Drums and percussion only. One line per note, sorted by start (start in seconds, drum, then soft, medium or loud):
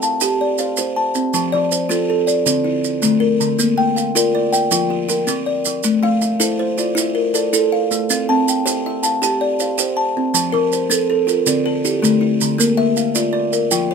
0.02 maracas soft
0.21 maracas medium
0.58 maracas soft
0.77 maracas medium
1.15 maracas soft
1.34 maracas medium
1.72 maracas soft
1.91 maracas medium
2.28 maracas soft
2.46 maracas medium
2.84 maracas soft
3.02 maracas medium
3.41 maracas medium
3.59 maracas medium
3.97 maracas medium
4.16 maracas medium
4.53 maracas medium
4.71 maracas medium
5.09 maracas medium
5.28 maracas medium
5.65 maracas medium
5.83 maracas medium
6.21 maracas soft
6.40 maracas medium
6.78 maracas medium
6.97 maracas medium
7.35 maracas soft
7.54 maracas medium
7.91 maracas medium
8.10 maracas medium
8.48 maracas medium
8.67 maracas medium
9.03 maracas medium
9.23 maracas medium
9.60 maracas medium
9.78 maracas medium
10.35 maracas medium
10.72 maracas medium
10.91 maracas medium
11.28 maracas medium
11.47 maracas medium
11.85 maracas medium
12.04 maracas medium
12.41 maracas medium
12.60 maracas medium
12.97 maracas medium
13.15 maracas medium
13.53 maracas medium
13.71 maracas medium